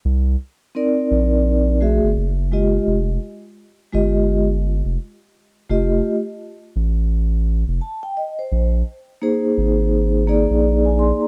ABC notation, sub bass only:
X:1
M:4/4
L:1/16
Q:"Swing 16ths" 1/4=85
K:Fdor
V:1 name="Sub bass" clef=bass
C,,2 z4 B,,,4- B,,, G,,, ^F,,,4 | F,,,2 z4 G,,,4- G,,, F,,, z4 | F,,,2 z4 =A,,,4- A,,, F,,, z4 | B,,,2 z4 A,,,4- A,,, B,,,4 z |]